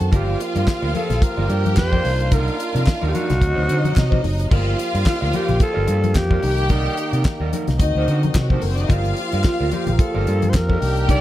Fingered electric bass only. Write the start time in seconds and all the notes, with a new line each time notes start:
0.01 F#2
0.13 G1
0.56 G2
0.83 D2
1.10 A#1
1.38 G1
1.50 G2
1.78 F2
2.05 C2
2.75 C3
3.03 D#2
3.31 C2
3.42 D2
3.58 D2
3.70 D3
3.97 C3
4.24 F#1
4.51 G1
4.95 G2
5.22 D2
5.49 A#1
5.77 G1
5.88 G2
6.16 F2
6.43 C2
7.13 C3
7.40 D#2
7.68 C2
7.80 D2
7.95 D2
8.08 D3
8.35 C3
8.63 F#1
8.90 G1
9.33 G2
9.61 D2
9.88 A#1
10.16 G1
10.28 G2
10.54 F2
10.82 C2